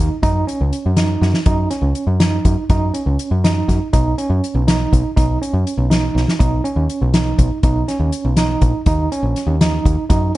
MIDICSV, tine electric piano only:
0, 0, Header, 1, 2, 480
1, 0, Start_track
1, 0, Tempo, 493827
1, 222, Time_signature, 5, 3, 24, 8
1, 10081, End_track
2, 0, Start_track
2, 0, Title_t, "Tine electric piano"
2, 0, Program_c, 0, 4
2, 0, Note_on_c, 0, 63, 72
2, 156, Note_off_c, 0, 63, 0
2, 223, Note_on_c, 0, 63, 86
2, 431, Note_off_c, 0, 63, 0
2, 460, Note_on_c, 0, 61, 66
2, 878, Note_off_c, 0, 61, 0
2, 940, Note_on_c, 0, 63, 69
2, 1357, Note_off_c, 0, 63, 0
2, 1421, Note_on_c, 0, 63, 78
2, 1629, Note_off_c, 0, 63, 0
2, 1659, Note_on_c, 0, 61, 67
2, 2076, Note_off_c, 0, 61, 0
2, 2138, Note_on_c, 0, 63, 71
2, 2556, Note_off_c, 0, 63, 0
2, 2624, Note_on_c, 0, 63, 81
2, 2830, Note_off_c, 0, 63, 0
2, 2856, Note_on_c, 0, 61, 62
2, 3274, Note_off_c, 0, 61, 0
2, 3345, Note_on_c, 0, 63, 74
2, 3759, Note_off_c, 0, 63, 0
2, 3821, Note_on_c, 0, 63, 82
2, 4029, Note_off_c, 0, 63, 0
2, 4063, Note_on_c, 0, 61, 70
2, 4478, Note_off_c, 0, 61, 0
2, 4546, Note_on_c, 0, 63, 73
2, 4960, Note_off_c, 0, 63, 0
2, 5019, Note_on_c, 0, 63, 76
2, 5227, Note_off_c, 0, 63, 0
2, 5266, Note_on_c, 0, 61, 66
2, 5679, Note_off_c, 0, 61, 0
2, 5738, Note_on_c, 0, 63, 71
2, 6155, Note_off_c, 0, 63, 0
2, 6214, Note_on_c, 0, 63, 75
2, 6424, Note_off_c, 0, 63, 0
2, 6457, Note_on_c, 0, 61, 68
2, 6874, Note_off_c, 0, 61, 0
2, 6943, Note_on_c, 0, 63, 69
2, 7358, Note_off_c, 0, 63, 0
2, 7429, Note_on_c, 0, 63, 75
2, 7633, Note_off_c, 0, 63, 0
2, 7662, Note_on_c, 0, 61, 70
2, 8078, Note_off_c, 0, 61, 0
2, 8141, Note_on_c, 0, 63, 81
2, 8558, Note_off_c, 0, 63, 0
2, 8627, Note_on_c, 0, 63, 80
2, 8832, Note_off_c, 0, 63, 0
2, 8862, Note_on_c, 0, 61, 76
2, 9278, Note_off_c, 0, 61, 0
2, 9341, Note_on_c, 0, 63, 77
2, 9758, Note_off_c, 0, 63, 0
2, 9813, Note_on_c, 0, 63, 77
2, 10024, Note_off_c, 0, 63, 0
2, 10081, End_track
0, 0, End_of_file